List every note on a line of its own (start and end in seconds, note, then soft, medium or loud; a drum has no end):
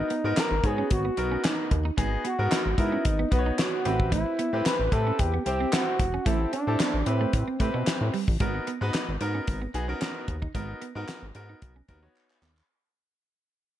0.00 0.10 B3 medium
0.00 0.10 D#4 medium
0.00 0.40 D#4 loud
0.00 0.10 F#4 medium
0.00 0.10 A#4 medium
0.10 0.21 B3 medium
0.10 closed hi-hat medium
0.24 0.34 G#2 loud
0.24 0.51 B3 medium
0.24 0.51 D#4 medium
0.24 0.51 F#4 medium
0.24 0.52 A#4 medium
0.37 0.48 D#4 medium
0.37 0.67 A#4 loud
0.37 snare loud
0.37 clap loud
0.37 closed hi-hat loud
0.51 0.60 G#1 loud
0.63 0.83 G#2 loud
0.63 1.00 B3 medium
0.63 1.00 D#4 medium
0.63 1.00 F#4 medium
0.63 0.91 G#4 loud
0.63 1.00 C#5 medium
0.63 muted clean electric guitar stroke soft
0.63 kick loud
0.63 closed hi-hat medium
0.78 0.88 C#4 medium
0.91 1.10 G#1 loud
0.91 1.47 F#4 loud
0.91 kick loud
0.91 closed hi-hat loud
1.05 1.14 B3 medium
1.17 1.37 B1 medium
1.17 1.71 B3 medium
1.17 1.71 D#4 medium
1.17 1.71 F#4 medium
1.17 1.71 A#4 medium
1.17 muted clean electric guitar stroke soft
1.17 closed hi-hat medium
1.32 1.41 C#4 medium
1.44 1.55 C#4 medium
1.44 1.86 D#4 medium
1.44 snare loud
1.44 clap medium
1.44 closed hi-hat medium
1.71 1.91 D#2 loud
1.71 muted clean electric guitar stroke soft
1.71 kick medium
1.71 closed hi-hat medium
1.85 1.95 D#4 medium
1.97 2.17 G#1 loud
1.97 2.09 G#3 medium
1.97 2.24 B3 medium
1.97 2.25 D#4 medium
1.97 2.25 F#4 medium
1.97 2.25 G#4 loud
1.97 kick loud
1.97 closed hi-hat loud
2.12 muted clean electric guitar stroke soft
2.24 2.35 B3 medium
2.24 2.75 F#4 loud
2.24 closed hi-hat medium
2.39 2.48 G#2 loud
2.39 2.66 B3 medium
2.39 2.66 D#4 medium
2.39 2.66 F#4 medium
2.39 2.66 A#4 medium
2.51 2.62 D#4 medium
2.51 snare loud
2.51 clap loud
2.51 closed hi-hat loud
2.66 2.75 G#1 loud
2.78 2.98 G#2 loud
2.78 3.14 B3 medium
2.78 3.15 D#4 medium
2.78 3.06 E4 loud
2.78 3.15 F#4 medium
2.78 3.15 A#4 medium
2.78 muted clean electric guitar stroke soft
2.78 kick medium
2.78 closed hi-hat medium
2.92 3.02 C#4 medium
3.05 3.25 G#1 loud
3.05 3.31 D#4 medium
3.05 kick loud
3.05 closed hi-hat loud
3.19 3.29 B3 medium
3.31 3.51 B1 medium
3.31 3.85 B3 medium
3.31 3.59 B3 loud
3.31 3.85 D#4 medium
3.31 3.85 F#4 medium
3.31 3.39 B4 medium
3.31 muted clean electric guitar stroke soft
3.31 kick loud
3.31 closed hi-hat medium
3.39 3.89 C#5 medium
3.46 3.56 D#4 medium
3.58 4.11 F#4 loud
3.58 snare loud
3.58 clap medium
3.58 closed hi-hat loud
3.85 4.25 A1 loud
3.85 4.39 C4 medium
3.85 3.96 C4 medium
3.85 4.39 E4 medium
3.85 4.39 G4 medium
3.85 4.39 B4 medium
3.85 closed hi-hat medium
4.00 kick medium
4.12 4.23 A3 medium
4.12 4.67 E4 loud
4.12 kick loud
4.12 closed hi-hat loud
4.26 muted clean electric guitar stroke soft
4.39 4.50 B3 medium
4.39 closed hi-hat medium
4.53 4.62 A2 loud
4.53 4.80 C4 medium
4.53 4.80 E4 medium
4.53 4.80 G4 medium
4.53 4.80 B4 medium
4.65 4.77 D#4 medium
4.65 4.93 B4 loud
4.65 snare loud
4.65 clap loud
4.65 closed hi-hat loud
4.79 4.89 A1 loud
4.92 5.12 A2 loud
4.92 5.29 C4 medium
4.92 5.29 E4 medium
4.92 5.29 G4 medium
4.92 5.20 A4 loud
4.92 5.29 B4 medium
4.92 muted clean electric guitar stroke soft
4.92 kick loud
4.92 closed hi-hat medium
5.07 5.16 C#4 medium
5.19 5.39 E2 loud
5.19 5.44 G4 loud
5.19 kick loud
5.19 closed hi-hat loud
5.34 5.43 B3 medium
5.45 5.66 C2 medium
5.45 6.00 C4 medium
5.45 6.00 E4 medium
5.45 5.74 G4 loud
5.45 6.00 G4 medium
5.45 6.00 C5 medium
5.45 muted clean electric guitar stroke soft
5.45 closed hi-hat medium
5.60 5.70 C4 medium
5.72 5.84 C4 medium
5.72 6.27 F#4 loud
5.72 snare loud
5.72 clap loud
5.72 closed hi-hat loud
5.99 6.19 E1 medium
5.99 muted clean electric guitar stroke soft
5.99 kick medium
5.99 closed hi-hat medium
6.14 6.23 C#4 medium
6.25 6.46 A1 loud
6.25 6.37 A3 medium
6.25 6.53 C4 medium
6.25 6.52 E4 loud
6.25 6.53 E4 medium
6.25 6.53 G4 medium
6.25 6.53 A4 medium
6.25 kick loud
6.25 closed hi-hat loud
6.40 muted clean electric guitar stroke soft
6.52 6.64 C#4 medium
6.52 7.07 D4 loud
6.52 closed hi-hat medium
6.67 6.77 A2 medium
6.67 6.94 C4 medium
6.67 6.94 E4 medium
6.67 6.94 G4 medium
6.67 6.95 A4 medium
6.80 6.91 B3 medium
6.80 snare loud
6.80 clap loud
6.80 closed hi-hat loud
6.94 7.03 A1 loud
7.06 7.26 A2 loud
7.06 8.13 C4 medium
7.06 7.43 C4 medium
7.06 7.43 E4 medium
7.06 7.43 G4 medium
7.06 7.43 B4 medium
7.06 muted clean electric guitar stroke soft
7.06 closed hi-hat medium
7.21 7.30 A3 medium
7.33 7.44 A2 loud
7.33 kick loud
7.33 closed hi-hat loud
7.48 7.57 C4 medium
7.60 7.71 A2 medium
7.60 8.14 C4 medium
7.60 8.14 E4 medium
7.60 8.14 G4 medium
7.60 8.14 B4 medium
7.60 muted clean electric guitar stroke soft
7.60 kick loud
7.60 closed hi-hat medium
7.74 7.84 B2 medium
7.74 7.84 B3 medium
7.87 snare loud
7.87 clap medium
7.87 closed hi-hat loud
8.01 8.10 A2 loud
8.14 8.25 G3 medium
8.14 open hi-hat medium
8.28 8.37 A1 medium
8.28 kick medium
8.40 8.60 G#1 loud
8.40 8.51 G#3 medium
8.40 8.67 B3 medium
8.40 8.67 D#4 medium
8.40 8.68 F#4 medium
8.40 8.68 A#4 loud
8.40 kick loud
8.40 closed hi-hat medium
8.55 muted clean electric guitar stroke soft
8.67 8.78 B3 medium
8.67 closed hi-hat medium
8.81 8.91 G#2 loud
8.81 9.08 B3 medium
8.81 9.08 D#4 medium
8.81 9.08 F#4 medium
8.81 9.09 B4 loud
8.94 9.05 D#4 medium
8.94 snare loud
8.94 clap loud
8.94 closed hi-hat loud
9.08 9.18 G#1 loud
9.21 9.41 G#2 loud
9.21 9.57 B3 medium
9.21 9.57 D#4 medium
9.21 9.57 F#4 medium
9.21 9.58 A#4 loud
9.21 muted clean electric guitar stroke soft
9.21 closed hi-hat medium
9.35 9.45 C#4 medium
9.47 9.67 G#1 loud
9.47 kick loud
9.47 closed hi-hat loud
9.62 9.71 B3 medium
9.74 9.94 B1 medium
9.74 9.84 B3 medium
9.74 9.84 D#4 medium
9.74 9.84 F#4 medium
9.74 9.84 G#4 loud
9.74 muted clean electric guitar stroke soft
9.74 closed hi-hat medium
9.88 10.33 B3 medium
9.88 9.98 C#4 medium
9.88 10.33 D#4 medium
9.88 10.33 F#4 medium
9.88 10.33 A#4 loud
10.01 10.12 C#4 medium
10.01 snare loud
10.01 clap medium
10.01 closed hi-hat loud
10.28 10.48 D#2 medium
10.28 muted clean electric guitar stroke soft
10.28 kick medium
10.28 closed hi-hat medium
10.42 10.52 D#4 medium
10.42 kick medium
10.54 10.74 G#1 loud
10.54 10.66 G#3 medium
10.54 10.82 B3 medium
10.54 10.82 D#4 medium
10.54 10.82 F#4 medium
10.54 10.82 A#4 medium
10.54 kick loud
10.54 closed hi-hat loud
10.69 muted clean electric guitar stroke soft
10.81 10.92 B3 medium
10.81 closed hi-hat medium
10.95 11.05 G#2 loud
10.95 11.22 B3 medium
10.95 11.23 D#4 medium
10.95 11.23 F#4 medium
10.95 11.23 A#4 loud
11.08 11.19 F#4 medium
11.08 snare loud
11.08 clap medium
11.08 closed hi-hat loud
11.22 11.32 G#1 loud
11.35 11.55 G#2 loud
11.35 11.71 B3 medium
11.35 11.72 D#4 medium
11.35 11.72 F#4 medium
11.35 11.72 A#4 medium
11.35 muted clean electric guitar stroke soft
11.35 closed hi-hat medium
11.49 11.59 D#4 medium
11.62 11.82 B1 medium
11.62 kick loud
11.62 closed hi-hat medium
11.76 11.86 C#4 medium
11.88 12.08 D#2 medium
11.88 11.98 B3 medium
11.88 11.98 D#4 medium
11.88 11.98 F#4 medium
11.88 11.98 A#4 medium
11.88 muted clean electric guitar stroke soft
11.88 kick loud
11.88 closed hi-hat medium
12.02 12.47 B3 medium
12.02 12.47 D#4 medium
12.02 12.12 D#4 medium
12.02 12.47 F#4 medium
12.02 12.47 C#5 medium
12.16 clap medium
12.30 clap medium
12.42 12.62 D#2 medium
12.42 12.53 B3 medium
12.42 clap loud
12.57 clap medium